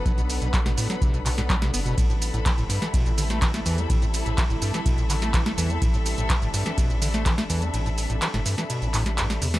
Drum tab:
RD |----------------|x---x---x---x---|x---x---x---x---|x---x---x---x---|
HH |xxoxxxoxxxoxxxox|xxoxxxoxxxoxxxox|xxoxxxoxxxoxxxox|xxoxxxoxxxoxxxox|
SH |xxxxxxxxxxxxxxxx|xxxxxxxxxxxxxxxx|xxxxxxxxxxxxxxxx|xxxxxxxxxxxxxxxx|
CP |----x-----x-x---|----x-------x---|----x-----x-x---|----x-------x---|
SD |-----o-o---o-o--|-------o---o-o--|-------o---o-o--|-------o---o-o--|
BD |o---o---o---o---|o---o---o---o---|o---o---o---o---|o---o---o---o---|

RD |x---x---x---x---|
HH |xxoxxxoxxxoxxxo-|
SH |xxxxxxxxxxxxxxxx|
CP |----x-----x-x---|
SD |-----o-o---o-o-o|
BD |----------------|